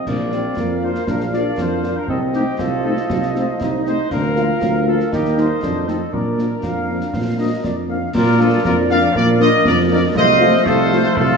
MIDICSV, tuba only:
0, 0, Header, 1, 2, 480
1, 0, Start_track
1, 0, Key_signature, -2, "major"
1, 0, Tempo, 504626
1, 63, Time_signature, 2, 2, 24, 8
1, 10817, End_track
2, 0, Start_track
2, 0, Title_t, "Tuba"
2, 0, Program_c, 0, 58
2, 70, Note_on_c, 0, 34, 51
2, 466, Note_off_c, 0, 34, 0
2, 548, Note_on_c, 0, 41, 54
2, 945, Note_off_c, 0, 41, 0
2, 1031, Note_on_c, 0, 34, 59
2, 1427, Note_off_c, 0, 34, 0
2, 1503, Note_on_c, 0, 41, 58
2, 1865, Note_off_c, 0, 41, 0
2, 1984, Note_on_c, 0, 36, 60
2, 2383, Note_off_c, 0, 36, 0
2, 2468, Note_on_c, 0, 36, 66
2, 2865, Note_off_c, 0, 36, 0
2, 2943, Note_on_c, 0, 36, 63
2, 3343, Note_off_c, 0, 36, 0
2, 3426, Note_on_c, 0, 36, 68
2, 3824, Note_off_c, 0, 36, 0
2, 3906, Note_on_c, 0, 38, 64
2, 4304, Note_off_c, 0, 38, 0
2, 4385, Note_on_c, 0, 38, 62
2, 4784, Note_off_c, 0, 38, 0
2, 4870, Note_on_c, 0, 39, 60
2, 5266, Note_off_c, 0, 39, 0
2, 5348, Note_on_c, 0, 41, 54
2, 5746, Note_off_c, 0, 41, 0
2, 5830, Note_on_c, 0, 46, 49
2, 6227, Note_off_c, 0, 46, 0
2, 6310, Note_on_c, 0, 41, 48
2, 6707, Note_off_c, 0, 41, 0
2, 6782, Note_on_c, 0, 46, 47
2, 7182, Note_off_c, 0, 46, 0
2, 7264, Note_on_c, 0, 41, 53
2, 7663, Note_off_c, 0, 41, 0
2, 7742, Note_on_c, 0, 46, 82
2, 8142, Note_off_c, 0, 46, 0
2, 8226, Note_on_c, 0, 41, 82
2, 8624, Note_off_c, 0, 41, 0
2, 8704, Note_on_c, 0, 46, 83
2, 9069, Note_off_c, 0, 46, 0
2, 9189, Note_on_c, 0, 41, 82
2, 9584, Note_off_c, 0, 41, 0
2, 9661, Note_on_c, 0, 36, 86
2, 10060, Note_off_c, 0, 36, 0
2, 10138, Note_on_c, 0, 36, 84
2, 10538, Note_off_c, 0, 36, 0
2, 10620, Note_on_c, 0, 36, 82
2, 10817, Note_off_c, 0, 36, 0
2, 10817, End_track
0, 0, End_of_file